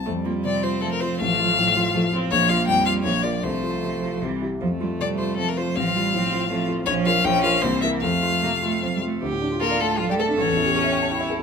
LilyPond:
<<
  \new Staff \with { instrumentName = "Violin" } { \time 3/4 \key f \major \tempo 4 = 158 r4 d''8 c''8 a'16 bes'16 c''8 | f''2~ f''8 r8 | des''8 f''8 g''8 f''8 des''8 d''8 | c''2 r4 |
r4 d''8 c''8 a'16 bes'16 c''8 | f''2~ f''8 r8 | des''8 f''8 g''8 f''8 c''8 e''8 | f''2~ f''8 r8 |
\key d \minor r4 bes'8 a'8 f'16 g'16 a'8 | cis''2~ cis''8 r8 | }
  \new Staff \with { instrumentName = "Grand piano" } { \time 3/4 \key f \major f,8 f'8 c8 f'8 a8 f'8 | a,,8 f'8 a,8 f'8 f8 f'8 | bes,,8 f'8 f,8 f'8 bes,,8 <f' bes'>8 | c,8 f'8 c8 f'8 c,8 <e' g'>8 |
f,8 f'8 c8 f'8 c'8 f'8 | a,,8 f'8 a,8 f'8 c'8 f'8 | bes,,8 <f' bes'>8 bes,,8 <f' bes'>8 c,8 <e' bes'>8 | f,8 f'8 c8 f'8 c'8 f'8 |
\key d \minor d,16 a,16 d'16 f'16 a'16 d''16 f''16 a''16 f''16 d''16 a'16 d'16 | a,,16 e,16 e'16 g'16 a'16 e''16 g''16 a''16 g''16 e''16 a'16 e'16 | }
  \new Staff \with { instrumentName = "Viola" } { \time 3/4 \key f \major a8 bes8 c'2 | a2 a8 c'8 | bes2 bes4 | a2 g8 r8 |
a2. | c'4 c'4 a4 | des'4 des'4 bes4 | a2~ a8 r8 |
\key d \minor g'4 f'4 a'4~ | a'4 cis'4 e'4 | }
  \new Staff \with { instrumentName = "Cello" } { \clef bass \time 3/4 \key f \major g2 f4~ | f2. | f4 g4 f4 | f2 e8 r8 |
f8 g8 g4 f4 | f8 g8 f4 f4 | f4 f4 e4 | f4 bes8 a8 f16 g16 a8 |
\key d \minor r4 bes8 a8 f16 g16 a8 | cis'2~ cis'8 r8 | }
>>